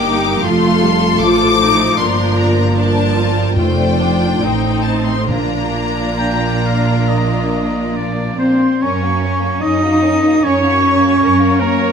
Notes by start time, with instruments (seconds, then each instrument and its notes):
Already playing: double bass section G1, cello section G2, viola section A#3, french horn section A#3 G4, violin section G4 G5 D6
0.05 viola section D#4
0.42 double bass section F1, cello section F2, french horn section A3 F4, viola section A3 F4, violin section A4 F5 C6
0.82 viola section G3
1.20 double bass section A1, cello section A2, viola section F3 F4, violin section C5 D6
1.60 viola section D#4
1.98 double bass section G1, cello section G2, french horn section A#3, viola section D4, violin section A#4 D5 C6
2.37 violin section A#5
2.75 viola section D4, violin section A#4 D5 A5
3.16 viola section F4
3.56 double bass section F1, timpani F2, cello section F2, french horn section A3 D#4, viola section A3 F4, violin section C5 D5 G5
4.00 viola section D4
4.41 double bass section A1, cello section A2, viola section C4 D#4, violin section C5
4.84 violin section A5
5.06 violin section C6
5.27 double bass section A#1, timpani A#2, cello section A#2, french horn section A#3 D4, viola section A#3 D4, violin section F4 D5 A#5
6.18 oboe G5
6.65 oboe F5
7.08 oboe D#5
7.96 oboe D5
8.38 cello section C4, french horn section C4, oboe C5, flute section C6
8.81 double bass section F#2, french horn section C#4, cello section C#4, violin section C#4 A#4, oboe C#5, flute section C#6
9.02 violin section A#3 F#4
9.23 violin section C#4 A#4
9.42 violin section A#3 F#4
9.62 double bass section F#2, violin section C#4 A#4, french horn section D#4, cello section D#4, oboe D#5, flute section D#6
9.83 violin section A#3 F#4
10.04 violin section C#4 A#4
10.24 violin section A#3 F#4
10.42 double bass section F#2, violin section C#4 A#4, french horn section C#4, cello section C#4, viola section C#5, oboe C#5, flute section C#6
10.62 violin section A#3 F#4
10.81 violin section C#4 A#4
11.00 violin section A#3 F#4
11.20 double bass section F#2, violin section C#4 A#4, viola section A#4
11.40 violin section A#3 F#4
11.59 cello section A#3, french horn section A#3, violin section C#4 A#4, oboe A#4, viola section C#5, flute section A#5
11.78 violin section A#3 F#4